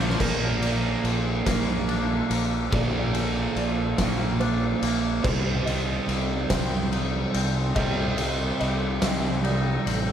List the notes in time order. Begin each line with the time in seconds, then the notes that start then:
Already playing: A#1 A#3 C4 F4 C5
0.03 A#2 F3
0.10 A#2 F3, snare
0.19 A#1 A#2 F3 A#3 A#4, kick, crash
0.62 A#3 D5, ride
1.04 A#1 F3, ride
1.46 A#1 A#3 A#4, kick, snare, ride
1.89 D4, ride
2.30 A#1 A#3, ride
2.71 A#1 A#2 F3 A#3 D5, kick, ride
3.14 A#3, ride
3.56 A#1 F3 D5, ride
3.98 A#1 A#3, kick, snare, ride
4.40 D4 C5, ride
4.82 A#1 A#3, ride
5.23 C2 C3 G3 C4 C5, kick, crash
5.65 C4 D#5, ride
6.08 C2 G3, ride
6.50 C2 C4 C5, kick, snare, ride
6.92 D#4, ride
7.34 C2 C4, ride
7.75 C2 C3 G3 C4 D#5, kick, ride
8.18 C4, ride
8.60 C2 G3 D#5, ride
9.02 C2 C4, snare, ride
9.44 D#4 D5, ride
9.85 A1 C4, ride